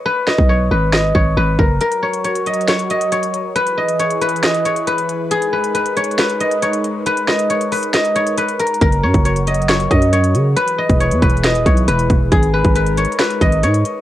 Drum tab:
HH |------------------------------------------------|x--x-----x--x--x--x-x-x-x--x--x--x--x--x--x-----|x--x-----x--x--x--x-x-x-x--x--x--x--x--x--x-----|x--x-----x--x--x--x-x-x-x--x--x--x--x--x--x-----|
SD |------o-----------------o-----------------------|------------------------o-----------------------|------------------------o-----------------------|------------------------o-----------------------|
BD |---------o--------------------o-----------o-----|------------------------------------------------|------------------------------------------------|------------------------------------------------|

HH |x--x-----x--x--x--o--x--x--x--x--x--x--x--x-x-x-|x--x-----x--x--x--x-x-x-x--x--x--x--x--x--x-----|x--x-----x--x--x--x-x-x-x--x--x--x--x--x--x-----|x--x-----x--x--x--x-x-x-x--x--x--x--x--x--x-----|
SD |------o-----------------o-----------------------|------------------------o-----------------------|------------------------o-----------------------|------------------------o-----------------------|
BD |------------------------------------------------|o--------o--------------------o-----------------|---------o--------o-----------o-----------o-----|o--------o--------------------o-----------------|